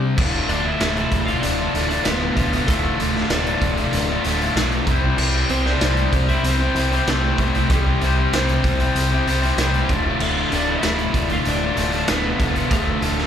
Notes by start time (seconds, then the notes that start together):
Already playing: C3 G3 C4 E4 G4 C5
0.17 D1 D2 A2 D3 A3 F4, kick, crash
0.49 D1 A2 D3 A3 D4 F4 D5, closed hi-hat
0.64 D3 A3 E4 F4 E5
0.79 D1 D2 A2 D3 A3 F4, snare, closed hi-hat
0.96 D3 A3 F4, closed hi-hat
1.11 D1 A2 D3 A3 F4, kick, closed hi-hat
1.26 A3 F4 F5, closed hi-hat
1.31 D3
1.40 D1 D4 D5, closed hi-hat
1.59 D3 A3 F4
1.73 D1 A2 D3 A3 F4, closed hi-hat
1.89 D3 A3 D4 F4 D5, closed hi-hat
2.04 D1 D2 A2 D3 A3 B3 B4, snare, closed hi-hat
2.08 F4
2.37 D1 A2 D3 A3 F4, kick, closed hi-hat
2.53 D3 A3 F4, closed hi-hat
2.67 D1 D2 A2 D3 A3 F4 A4, kick, closed hi-hat
2.98 D1 A2 D3 A3, closed hi-hat
3.03 F4
3.14 D3 A3 F4, snare
3.30 D1 D2 A2 D3 A3 D4 D5, snare, closed hi-hat
3.34 F4
3.46 D3 A3 F4, closed hi-hat
3.61 D1 A2 D3 A3 F4, kick, closed hi-hat
3.77 D3 A3 F4, closed hi-hat
3.93 D1, closed hi-hat
4.10 D3 A3 F4
4.24 D1 A2 D3 A3 F4, closed hi-hat
4.40 D3 A3 F4, closed hi-hat
4.55 B1 D2 A2 D3 A3 F4, snare, closed hi-hat
4.72 closed hi-hat
4.87 C2 C3 G3 C4 E4 G4 C5, kick, closed hi-hat
5.01 C4 E4 G4 C5
5.17 C2 C3 G3 C4 E4 G4 C5, crash
5.49 C2 C4 E4 G4 C5, closed hi-hat
5.65 C4 D4 E4 G4 C5 D5, snare
5.81 C2 C3 G3 C4 E4 G4 C5, snare, closed hi-hat
5.97 C4 E4 G4 C5, closed hi-hat
6.13 C2 C4 E4 G4 C5, kick, closed hi-hat
6.29 C4 E4 G4 C5 E5, closed hi-hat
6.43 C2 C4 C5, closed hi-hat
6.61 C4 E4 G4 C5
6.75 C2 C4 E4 G4, closed hi-hat
6.79 C5
6.91 C4 E4 G4 C5, closed hi-hat
7.07 C2 C3 G3 A3 C4 E4 G4 A4 C5, snare, closed hi-hat
7.38 C2 C4 E4 G4 C5, kick, closed hi-hat
7.54 C4 E4 G4 C5, closed hi-hat
7.70 C2 C3 G3 C4 E4 G4 C5, kick, closed hi-hat
8.01 C2 C4 E4 G4 C5, closed hi-hat
8.17 C4 E4 G4 C5
8.33 C2 C3 G3 C4 E4 G4 C5, snare, closed hi-hat
8.49 C4 E4 G4 C5, closed hi-hat
8.64 C2 C4 E4 G4 C5, kick, closed hi-hat
8.79 C4 E4 G4 C5, closed hi-hat
8.95 C2, closed hi-hat
9.11 C4 E4 G4 C5
9.27 C2 C4 E4 G4 C5, closed hi-hat
9.42 C4 E4 G4 C5, closed hi-hat
9.57 C2 C3 G3 C4 E4 G4 C5, snare, closed hi-hat
9.74 closed hi-hat
9.88 D1 D2 A2 D3 A3 F4, kick, closed hi-hat
10.04 D3 A3 F4
10.20 D1 D2 A2 D3 A3 F4, crash
10.51 D1 A2 D3 A3 D4 F4, closed hi-hat
10.56 D5
10.67 D3 A3 E4 F4
10.72 E5
10.82 D1 D2 A2 D3 A3 F4, snare, closed hi-hat
10.99 D3 A3 F4, closed hi-hat
11.14 D1 A2 D3 A3 F4, kick, closed hi-hat
11.20 D5
11.30 D3 A3 F4 F5, closed hi-hat
11.45 D1 D4 D5, closed hi-hat
11.61 D3 A3 F4
11.77 D1 A2 D3 A3 F4, closed hi-hat
11.92 D3 A3 D4 F4, closed hi-hat
11.96 D5
12.08 D1 D2 A2 D3 A3 B3 F4, snare, closed hi-hat
12.12 B4
12.40 D1 A2 D3 A3 F4, kick, closed hi-hat
12.56 D3 A3 F4, closed hi-hat
12.71 D1 D2 A2 D3 A3 F4 A4, kick, closed hi-hat
13.02 D1 A2 D3 A3 F4, closed hi-hat
13.18 D3 A3 F4, snare